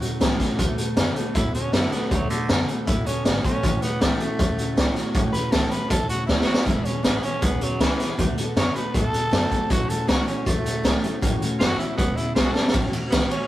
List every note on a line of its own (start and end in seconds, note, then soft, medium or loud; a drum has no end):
0.01 0.19 A2 medium
0.01 0.19 F#3 medium
0.01 0.20 F#3 medium
0.01 0.20 A3 medium
0.01 0.20 C#4 medium
0.01 0.21 F#4 medium
0.01 closed hi-hat medium
0.20 0.37 C#2 medium
0.20 0.38 A2 medium
0.20 0.40 A2 medium
0.20 0.40 E3 medium
0.20 0.38 E3 medium
0.20 0.40 F#3 medium
0.20 0.40 A3 medium
0.20 0.40 C#4 loud
0.20 0.39 F#4 medium
0.20 snare loud
0.20 closed hi-hat medium
0.39 0.56 A2 medium
0.39 0.57 E3 medium
0.39 0.60 A3 medium
0.39 0.60 C#4 medium
0.39 0.59 F#4 medium
0.39 kick medium
0.39 snare soft
0.39 closed hi-hat medium
0.43 0.59 F#3 soft
0.58 0.75 D2 loud
0.58 0.76 D3 medium
0.58 0.78 D3 medium
0.58 0.78 F#3 medium
0.58 0.76 A3 loud
0.58 0.79 B3 loud
0.58 0.79 F#4 loud
0.58 0.77 A4 loud
0.58 kick loud
0.58 closed hi-hat medium
0.77 0.95 D3 medium
0.77 0.95 A3 medium
0.77 0.98 F#4 medium
0.77 0.97 A4 medium
0.77 closed hi-hat medium
0.81 0.98 B3 medium
0.97 1.13 F#2 loud
0.97 1.14 D3 medium
0.97 1.16 D3 medium
0.97 1.17 F#3 medium
0.97 1.14 B3 medium
0.97 1.17 B3 medium
0.97 1.16 F#4 loud
0.97 1.14 A4 loud
0.97 snare loud
0.97 closed hi-hat medium
1.15 1.33 D3 medium
1.15 1.33 A3 medium
1.15 1.34 B3 medium
1.15 1.36 F#4 medium
1.15 1.35 A4 medium
1.15 closed hi-hat medium
1.34 1.51 A2 loud
1.34 1.52 D3 medium
1.34 1.54 F#3 medium
1.34 1.52 B3 medium
1.34 1.54 B3 medium
1.34 1.54 E4 loud
1.34 1.55 F#4 medium
1.34 1.53 A4 medium
1.34 kick loud
1.34 closed hi-hat medium
1.53 1.71 D3 medium
1.53 1.71 B3 medium
1.53 1.74 C#4 medium
1.53 1.74 F#4 medium
1.53 1.73 A4 medium
1.53 muted upright bass stroke medium
1.53 closed hi-hat medium
1.57 1.73 B3 soft
1.73 1.89 F#2 medium
1.73 1.90 D3 medium
1.73 1.92 D3 medium
1.73 1.92 F#3 medium
1.73 1.90 A3 medium
1.73 1.93 B3 loud
1.73 1.93 E4 loud
1.73 1.93 F#4 loud
1.73 1.92 A4 medium
1.73 snare loud
1.73 closed hi-hat medium
1.91 2.09 D3 medium
1.91 2.10 A3 medium
1.91 2.13 B3 medium
1.91 2.12 F#4 medium
1.91 2.12 A4 medium
1.91 snare soft
1.91 closed hi-hat medium
1.96 2.11 B3 soft
2.11 2.27 D2 loud
2.11 2.30 D3 medium
2.11 2.28 D3 medium
2.11 2.29 F#3 medium
2.11 2.30 F#3 medium
2.11 2.28 A3 loud
2.11 2.31 B3 medium
2.11 2.31 F#4 medium
2.11 2.29 A4 loud
2.11 kick loud
2.11 closed hi-hat medium
2.30 2.67 D3 medium
2.30 2.47 D3 medium
2.30 2.47 A3 medium
2.30 2.49 B3 soft
2.30 2.50 F#4 soft
2.30 2.49 A4 medium
2.30 closed hi-hat medium
2.49 2.65 F#2 loud
2.49 2.68 D3 medium
2.49 2.69 F#3 medium
2.49 2.69 B3 medium
2.49 2.69 F#4 medium
2.49 2.67 A4 medium
2.49 snare loud
2.49 closed hi-hat medium
2.68 2.85 D3 medium
2.68 2.86 A3 medium
2.68 2.88 B3 soft
2.68 2.88 F#4 soft
2.68 2.87 A4 medium
2.68 closed hi-hat medium
2.87 3.03 A2 loud
2.87 3.04 D3 medium
2.87 3.06 F#3 medium
2.87 3.05 B3 medium
2.87 3.07 B3 medium
2.87 3.08 E4 loud
2.87 3.07 F#4 medium
2.87 3.05 A4 medium
2.87 kick loud
2.87 closed hi-hat medium
3.06 3.24 D3 medium
3.06 3.24 B3 medium
3.06 3.25 B3 soft
3.06 3.27 C#4 medium
3.06 3.26 F#4 medium
3.06 3.25 A4 medium
3.06 muted upright bass stroke medium
3.06 closed hi-hat medium
3.25 3.41 G#1 medium
3.25 3.44 D3 medium
3.25 3.42 D3 medium
3.25 3.45 F#3 medium
3.25 3.43 A3 medium
3.25 3.43 B3 medium
3.25 3.44 B3 medium
3.25 3.45 F#4 medium
3.25 3.43 A4 medium
3.25 snare loud
3.25 closed hi-hat medium
3.44 3.61 D3 medium
3.44 3.62 A3 medium
3.44 3.64 B3 soft
3.44 3.83 C#4 loud
3.44 3.64 F#4 medium
3.44 3.63 A4 medium
3.44 muted upright bass stroke medium
3.44 kick medium
3.44 closed hi-hat medium
3.63 3.79 A1 loud
3.63 3.82 A2 medium
3.63 3.81 A2 medium
3.63 3.82 E3 medium
3.63 3.81 E3 loud
3.63 3.82 F#3 medium
3.63 3.82 A3 medium
3.63 3.81 C#4 loud
3.63 3.80 F#4 medium
3.63 kick loud
3.63 closed hi-hat medium
3.81 4.00 A2 medium
3.81 4.00 E3 medium
3.81 4.01 F#3 soft
3.81 4.02 A3 soft
3.81 4.03 B3 loud
3.81 4.01 C#4 soft
3.81 4.01 F#4 medium
3.81 closed hi-hat medium
4.01 4.17 C#2 loud
4.01 4.20 A2 medium
4.01 4.18 A2 medium
4.01 4.20 E3 medium
4.01 4.19 F#3 medium
4.01 4.21 F#3 medium
4.01 5.12 A3 medium
4.01 4.21 A3 medium
4.01 4.20 C#4 medium
4.01 4.19 F#4 medium
4.01 snare loud
4.01 closed hi-hat loud
4.20 4.38 A2 medium
4.20 4.38 E3 medium
4.20 4.38 F#3 soft
4.20 4.39 A3 soft
4.20 4.40 C#4 medium
4.20 4.39 F#4 medium
4.20 muted upright bass stroke medium
4.20 closed hi-hat medium
4.39 4.55 E2 loud
4.39 4.57 A2 medium
4.39 4.58 F#3 medium
4.39 4.57 F#3 medium
4.39 4.59 A3 medium
4.39 4.58 C#4 medium
4.39 4.56 F#4 medium
4.39 kick loud
4.39 closed hi-hat loud
4.58 4.75 A2 medium
4.58 4.76 F#3 medium
4.58 4.76 F#3 soft
4.58 4.77 A3 medium
4.58 4.77 C#4 medium
4.58 4.77 F#4 medium
4.58 muted upright bass stroke medium
4.58 closed hi-hat medium
4.77 4.93 C#2 medium
4.77 4.96 A2 medium
4.77 4.94 A2 medium
4.77 4.96 E3 medium
4.77 4.94 E3 medium
4.77 4.96 F#3 loud
4.77 4.96 A3 loud
4.77 4.95 C#4 loud
4.77 4.94 F#4 loud
4.77 snare loud
4.77 closed hi-hat medium
4.95 5.13 A2 medium
4.95 5.13 E3 medium
4.95 5.14 F#3 medium
4.95 5.15 A3 medium
4.95 5.15 C#4 medium
4.95 5.14 F#4 medium
4.95 snare soft
4.95 closed hi-hat medium
5.14 5.31 A1 medium
5.14 5.34 A2 loud
5.14 5.32 A2 medium
5.14 5.34 E3 medium
5.14 5.32 E3 loud
5.14 5.34 F#3 loud
5.14 5.34 A3 loud
5.14 5.34 C#4 loud
5.14 5.33 F#4 loud
5.14 kick loud
5.14 closed hi-hat medium
5.33 5.51 A2 medium
5.33 5.51 E3 medium
5.33 5.53 A3 soft
5.33 5.53 C#4 medium
5.33 5.53 F#4 medium
5.33 5.53 B4 loud
5.33 muted upright bass stroke medium
5.33 closed hi-hat medium
5.37 5.52 F#3 soft
5.51 5.69 C#2 loud
5.51 5.72 A2 medium
5.51 5.70 A2 medium
5.51 5.72 E3 medium
5.51 5.70 F#3 medium
5.51 5.72 F#3 medium
5.51 5.72 A3 medium
5.51 5.72 C#4 medium
5.51 5.71 F#4 medium
5.51 5.72 A4 medium
5.51 snare loud
5.51 closed hi-hat medium
5.70 5.89 A2 medium
5.70 5.89 E3 medium
5.70 5.92 C#4 medium
5.70 5.91 F#4 medium
5.70 5.91 B4 loud
5.70 closed hi-hat medium
5.75 5.90 F#3 soft
5.75 5.91 A3 soft
5.90 6.06 E2 loud
5.90 6.08 A2 medium
5.90 6.10 F#3 medium
5.90 6.08 F#3 medium
5.90 6.10 A3 medium
5.90 6.09 C#4 medium
5.90 6.09 A4 loud
5.90 kick loud
5.90 closed hi-hat medium
5.94 6.08 F#4 medium
6.09 6.27 A2 medium
6.09 6.27 F#3 medium
6.09 6.27 F#3 soft
6.09 6.28 A3 soft
6.09 6.28 C#4 soft
6.09 6.28 F#4 medium
6.09 6.26 F#4 medium
6.09 muted upright bass stroke medium
6.09 closed hi-hat medium
6.26 6.45 D2 medium
6.26 6.47 A2 medium
6.26 6.46 A2 medium
6.26 6.47 E3 medium
6.26 6.46 E3 loud
6.26 6.47 F#3 medium
6.26 6.47 A3 medium
6.26 6.46 C#4 medium
6.26 6.44 E4 medium
6.26 6.45 F#4 medium
6.26 snare medium
6.41 6.66 F#4 medium
6.41 snare medium
6.46 6.65 A2 medium
6.46 6.65 E3 medium
6.46 6.65 F#3 soft
6.46 6.66 A3 soft
6.46 6.65 C#4 medium
6.46 6.66 F#4 medium
6.46 muted upright bass stroke medium
6.54 snare loud
6.65 6.82 E1 loud
6.65 6.84 E2 loud
6.65 6.84 B2 loud
6.65 6.85 E3 medium
6.65 6.85 G#3 medium
6.65 6.85 B3 medium
6.65 6.84 C#4 medium
6.65 6.86 E4 medium
6.65 6.83 G#4 medium
6.65 kick loud
6.65 closed hi-hat medium
6.84 7.03 E2 medium
6.84 7.03 B2 medium
6.84 7.02 B3 soft
6.84 7.05 C#4 medium
6.84 7.03 C#4 soft
6.84 7.03 G#4 medium
6.84 muted upright bass stroke medium
6.84 closed hi-hat medium
7.03 7.20 G#1 medium
7.03 7.22 E2 medium
7.03 7.22 C#3 medium
7.03 7.23 E3 medium
7.03 7.23 G#3 medium
7.03 7.23 B3 medium
7.03 7.25 B3 medium
7.03 7.23 C#4 medium
7.03 7.21 G#4 medium
7.03 snare loud
7.03 closed hi-hat loud
7.23 7.41 E2 medium
7.23 7.41 B2 medium
7.23 7.41 B3 soft
7.23 7.44 C#4 medium
7.23 7.42 C#4 medium
7.23 7.42 G#4 medium
7.23 muted upright bass stroke medium
7.23 closed hi-hat medium
7.41 7.58 B1 loud
7.41 7.60 E2 medium
7.41 7.60 C#3 medium
7.41 7.61 G#3 medium
7.41 7.61 B3 medium
7.41 7.65 B3 medium
7.41 7.61 C#4 medium
7.41 7.60 G#4 medium
7.41 kick loud
7.41 closed hi-hat loud
7.61 7.79 E2 medium
7.61 7.79 C#3 medium
7.61 7.80 F#3 medium
7.61 7.81 B3 soft
7.61 7.81 C#4 soft
7.61 7.80 G#4 medium
7.61 muted upright bass stroke medium
7.61 closed hi-hat medium
7.79 7.96 C#2 medium
7.79 7.98 B2 medium
7.79 8.00 E3 medium
7.79 8.18 E3 loud
7.79 8.00 G#3 medium
7.79 8.00 B3 medium
7.79 8.00 C#4 medium
7.79 7.99 G#4 medium
7.79 snare loud
7.79 closed hi-hat medium
7.99 8.16 E2 medium
7.99 8.17 B2 medium
7.99 8.19 B3 soft
7.99 8.20 C#4 soft
7.99 8.19 G#4 medium
7.99 snare soft
7.99 closed hi-hat medium
8.19 8.35 D2 loud
8.19 8.36 D3 loud
8.19 8.38 D3 medium
8.19 8.38 F#3 medium
8.19 8.36 A3 loud
8.19 8.38 B3 medium
8.19 8.39 F#4 medium
8.19 8.36 A4 loud
8.19 kick loud
8.19 closed hi-hat medium
8.37 8.55 D3 medium
8.37 8.55 A3 medium
8.37 8.56 B3 soft
8.37 8.57 F#4 medium
8.37 8.57 A4 medium
8.37 muted upright bass stroke medium
8.37 closed hi-hat medium
8.56 8.72 F#2 loud
8.56 8.73 D3 medium
8.56 8.75 D3 medium
8.56 8.76 F#3 medium
8.56 8.74 B3 loud
8.56 8.76 B3 medium
8.56 8.74 F#4 medium
8.56 8.73 A4 medium
8.56 8.77 C#5 loud
8.56 snare loud
8.56 closed hi-hat medium
8.74 8.93 D3 medium
8.74 8.93 A3 medium
8.74 8.94 B3 soft
8.74 8.94 F#4 soft
8.74 8.94 A4 medium
8.74 8.94 B4 medium
8.74 muted upright bass stroke medium
8.74 closed hi-hat medium
8.94 9.10 A2 loud
8.94 9.12 D3 medium
8.94 9.13 F#3 medium
8.94 9.14 B3 medium
8.94 9.12 B3 medium
8.94 9.13 F#4 medium
8.94 9.73 A4 loud
8.94 9.12 A4 medium
8.94 kick loud
8.94 closed hi-hat medium
9.13 9.31 D3 medium
9.13 9.31 B3 medium
9.13 9.30 B3 soft
9.13 9.31 F#4 soft
9.13 9.31 A4 medium
9.13 muted upright bass stroke medium
9.13 closed hi-hat medium
9.31 9.48 F#2 loud
9.31 9.50 D3 medium
9.31 9.49 D3 medium
9.31 9.51 F#3 medium
9.31 9.50 A3 loud
9.31 9.51 B3 medium
9.31 9.51 F#4 medium
9.31 9.49 A4 loud
9.31 snare loud
9.31 closed hi-hat medium
9.50 9.68 D3 medium
9.50 9.69 A3 medium
9.50 9.71 B3 medium
9.50 9.71 F#4 medium
9.50 9.70 A4 medium
9.50 kick medium
9.50 closed hi-hat medium
9.70 9.86 A1 loud
9.70 9.89 A2 medium
9.70 9.88 A2 medium
9.70 9.89 E3 medium
9.70 9.88 E3 loud
9.70 9.89 F#3 medium
9.70 9.90 A3 medium
9.70 9.89 C#4 loud
9.70 9.91 F#4 medium
9.70 9.88 F#4 loud
9.70 kick loud
9.70 closed hi-hat medium
9.89 10.07 A2 medium
9.89 10.07 E3 medium
9.89 10.07 F#3 soft
9.89 10.07 A3 soft
9.89 10.08 C#4 soft
9.89 10.08 F#4 medium
9.89 10.10 A4 medium
9.89 muted upright bass stroke medium
9.89 closed hi-hat medium
10.07 10.24 C#2 loud
10.07 10.27 A2 medium
10.07 10.25 A2 medium
10.07 10.27 E3 medium
10.07 10.27 F#3 medium
10.07 10.26 F#3 medium
10.07 10.27 A3 medium
10.07 10.26 C#4 medium
10.07 10.26 F#4 medium
10.07 10.25 F#4 medium
10.07 snare loud
10.07 closed hi-hat medium
10.26 10.44 A2 medium
10.26 10.45 E3 medium
10.26 10.44 F#3 soft
10.26 10.46 A3 medium
10.26 10.48 C#4 medium
10.26 10.46 C#4 soft
10.26 10.45 F#4 medium
10.26 closed hi-hat medium
10.46 10.62 E2 medium
10.46 10.64 A2 medium
10.46 10.65 F#3 medium
10.46 10.64 F#3 medium
10.46 11.20 A3 loud
10.46 10.65 A3 medium
10.46 10.64 C#4 medium
10.46 10.63 F#4 medium
10.46 kick loud
10.46 closed hi-hat medium
10.65 10.82 A2 medium
10.65 10.83 F#3 medium
10.65 10.83 F#3 soft
10.65 10.83 A3 soft
10.65 10.84 C#4 medium
10.65 10.84 F#4 medium
10.65 muted upright bass stroke medium
10.65 closed hi-hat medium
10.83 11.00 C#2 medium
10.83 11.03 A2 medium
10.83 11.01 A2 medium
10.83 11.03 E3 medium
10.83 11.02 E3 medium
10.83 11.03 F#3 medium
10.83 11.03 A3 medium
10.83 11.02 C#4 loud
10.83 11.01 F#4 medium
10.83 snare loud
10.83 closed hi-hat medium
11.02 11.20 A2 medium
11.02 11.21 E3 medium
11.02 11.21 F#3 medium
11.02 11.22 A3 medium
11.02 11.22 C#4 medium
11.02 11.22 F#4 medium
11.02 closed hi-hat medium
11.21 11.38 A1 loud
11.21 11.41 A2 loud
11.21 11.39 A2 loud
11.21 11.41 E3 medium
11.21 11.39 E3 loud
11.21 11.41 F#3 medium
11.21 11.42 A3 loud
11.21 11.41 C#4 loud
11.21 11.39 F#4 loud
11.21 kick loud
11.21 closed hi-hat medium
11.41 11.59 A2 medium
11.41 11.59 E3 medium
11.41 11.60 F#3 soft
11.41 11.61 A3 medium
11.41 11.61 C#4 medium
11.41 11.60 F#4 medium
11.41 muted upright bass stroke medium
11.41 closed hi-hat medium
11.59 11.76 F#1 medium
11.59 11.79 A2 medium
11.59 11.78 A2 medium
11.59 11.80 E3 medium
11.59 11.78 F#3 medium
11.59 11.80 F#3 medium
11.59 11.80 A3 medium
11.59 11.79 C#4 medium
11.59 11.78 F#4 loud
11.59 11.78 F#4 medium
11.59 snare loud
11.59 closed hi-hat medium
11.78 11.96 A2 medium
11.78 11.97 E3 medium
11.78 11.99 A3 medium
11.78 11.99 C#4 soft
11.78 11.96 E4 medium
11.78 11.98 F#4 medium
11.78 muted upright bass stroke medium
11.78 closed hi-hat medium
11.83 11.97 F#3 soft
11.97 12.14 E1 medium
11.97 12.16 E2 medium
11.97 12.16 B2 medium
11.97 12.17 G#3 medium
11.97 12.18 B3 loud
11.97 12.18 B3 medium
11.97 12.18 C#4 medium
11.97 kick loud
11.97 closed hi-hat medium
12.01 12.17 G#4 medium
12.17 12.34 E2 medium
12.17 12.35 C#3 medium
12.17 12.37 C#4 medium
12.17 12.35 E4 medium
12.17 12.37 G#4 medium
12.17 closed hi-hat medium
12.22 12.36 B3 soft
12.35 12.52 B1 medium
12.35 12.53 E2 medium
12.35 12.54 B2 medium
12.35 12.55 E3 medium
12.35 12.56 G#3 medium
12.35 12.56 B3 medium
12.35 12.55 C#4 loud
12.35 12.53 F#4 medium
12.35 12.54 G#4 medium
12.35 snare loud
12.35 closed hi-hat medium
12.53 12.72 E2 medium
12.53 12.73 B2 medium
12.53 12.75 C#4 medium
12.53 12.74 G#4 medium
12.53 12.73 A4 medium
12.53 snare medium
12.59 12.75 B3 soft
12.68 snare medium
12.74 12.90 A1 loud
12.74 12.93 A2 medium
12.74 12.93 E3 medium
12.74 12.94 F#3 medium
12.74 12.94 A3 medium
12.74 12.92 C#4 loud
12.74 12.91 F#4 medium
12.74 kick loud
12.74 ride medium
12.93 13.12 F#3 medium
12.93 13.12 A3 medium
12.93 13.12 C#4 medium
12.93 13.12 F#4 medium
12.93 muted upright bass stroke medium
12.93 ride medium
13.10 13.28 C#2 loud
13.10 13.31 A2 medium
13.10 13.31 E3 medium
13.10 13.31 F#3 medium
13.10 13.32 A3 medium
13.10 13.32 B3 medium
13.10 13.31 C#4 medium
13.10 13.29 F#4 medium
13.10 snare loud
13.10 ride medium
13.30 13.47 F#3 soft
13.30 13.47 A3 soft
13.30 13.47 C#4 medium
13.30 13.47 C#4 soft
13.30 13.47 F#4 medium
13.30 ride medium